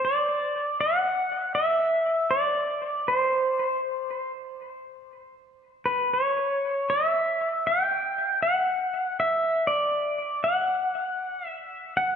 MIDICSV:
0, 0, Header, 1, 2, 480
1, 0, Start_track
1, 0, Tempo, 760456
1, 23, Time_signature, 4, 2, 24, 8
1, 7673, End_track
2, 0, Start_track
2, 0, Title_t, "Pedal steel guitar"
2, 0, Program_c, 0, 26
2, 30, Note_on_c, 0, 74, 78
2, 506, Note_off_c, 0, 74, 0
2, 508, Note_on_c, 0, 78, 89
2, 975, Note_off_c, 0, 78, 0
2, 978, Note_on_c, 0, 76, 79
2, 1455, Note_on_c, 0, 74, 87
2, 1476, Note_off_c, 0, 76, 0
2, 1945, Note_on_c, 0, 72, 62
2, 1955, Note_off_c, 0, 74, 0
2, 2400, Note_off_c, 0, 72, 0
2, 3696, Note_on_c, 0, 71, 67
2, 3872, Note_on_c, 0, 73, 67
2, 3876, Note_off_c, 0, 71, 0
2, 4354, Note_on_c, 0, 76, 79
2, 4364, Note_off_c, 0, 73, 0
2, 4838, Note_off_c, 0, 76, 0
2, 4841, Note_on_c, 0, 79, 82
2, 5315, Note_off_c, 0, 79, 0
2, 5318, Note_on_c, 0, 78, 83
2, 5803, Note_off_c, 0, 78, 0
2, 5806, Note_on_c, 0, 76, 80
2, 6106, Note_on_c, 0, 74, 83
2, 6107, Note_off_c, 0, 76, 0
2, 6589, Note_on_c, 0, 78, 83
2, 6591, Note_off_c, 0, 74, 0
2, 7239, Note_off_c, 0, 78, 0
2, 7239, Note_on_c, 0, 76, 83
2, 7548, Note_off_c, 0, 76, 0
2, 7555, Note_on_c, 0, 78, 89
2, 7673, Note_off_c, 0, 78, 0
2, 7673, End_track
0, 0, End_of_file